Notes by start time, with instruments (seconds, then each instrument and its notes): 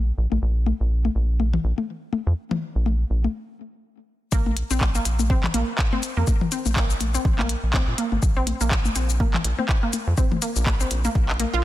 Already playing: analog synth bass A#1
0.18 analog synth bass A#1
0.32 analog synth bass A#1, high tom
0.42 analog synth bass A#1
0.66 high tom
0.80 analog synth bass A#1
1.05 high tom
1.15 analog synth bass A#1
1.40 high tom
1.53 mid tom
1.64 analog synth bass A#1
1.78 high tom
2.13 high tom
2.27 analog synth bass F2
2.51 mid tom, high tom
2.75 analog synth bass A#1
2.86 high tom
3.10 analog synth bass A#1
3.24 high tom
4.32 analog synth bass A#1, synth arpeggio sound A#3, kick, cabasa
4.46 high tom
4.57 closed hi-hat
4.71 analog synth bass A#1, synth arpeggio sound C4, cabasa
4.81 kick, clap, high tom
4.95 synth arpeggio sound A#3, cabasa
5.05 analog synth bass A#1, closed hi-hat, cabasa
5.19 high tom, cabasa
5.30 synth arpeggio sound C4, kick
5.44 clap, mid tom
5.54 analog synth bass A#1, synth arpeggio sound A#3, closed hi-hat, high tom
5.79 kick, clap
5.92 synth arpeggio sound C4, high tom
6.03 closed hi-hat, cabasa
6.17 analog synth bass F2, synth arpeggio sound A#3
6.27 kick, high tom, cabasa
6.41 mid tom
6.52 synth arpeggio sound C4, closed hi-hat, cabasa
6.66 analog synth bass A#1, high tom, cabasa
6.76 synth arpeggio sound A#3, kick, clap
6.90 cabasa
7.00 analog synth bass A#1, closed hi-hat, high tom, cabasa
7.15 synth arpeggio sound C4, cabasa
7.25 analog synth bass A#1, kick
7.39 synth arpeggio sound A#3, clap, high tom
7.49 closed hi-hat
7.63 analog synth bass A#1
7.74 synth arpeggio sound C4, kick, clap, high tom
7.88 analog synth bass A#2
7.98 synth arpeggio sound A#3, closed hi-hat
8.12 analog synth bass G#1, high tom
8.22 analog synth bass A#1, kick, cabasa
8.37 synth arpeggio sound C4
8.47 closed hi-hat, high tom
8.61 analog synth bass A#1, synth arpeggio sound A#3, cabasa
8.71 kick, clap
8.85 high tom, cabasa
8.96 analog synth bass A#1, synth arpeggio sound C4, closed hi-hat, cabasa
9.10 cabasa
9.20 synth arpeggio sound A#3, kick, high tom
9.34 clap, mid tom
9.44 analog synth bass A#1, closed hi-hat
9.58 synth arpeggio sound C4, high tom
9.69 kick, clap
9.83 synth arpeggio sound A#3
9.93 closed hi-hat, high tom, cabasa
10.07 analog synth bass F2
10.18 synth arpeggio sound C4, kick, cabasa
10.32 mid tom, high tom
10.42 synth arpeggio sound A#3, closed hi-hat, cabasa
10.56 analog synth bass A#1, cabasa
10.66 kick, clap, high tom
10.80 synth arpeggio sound C4, cabasa
10.91 analog synth bass A#1, closed hi-hat, cabasa
11.05 synth arpeggio sound A#3, high tom, cabasa
11.15 analog synth bass A#1, kick
11.29 clap
11.40 synth arpeggio sound A#3, closed hi-hat, high tom
11.53 analog synth bass A#1, synth arpeggio sound F4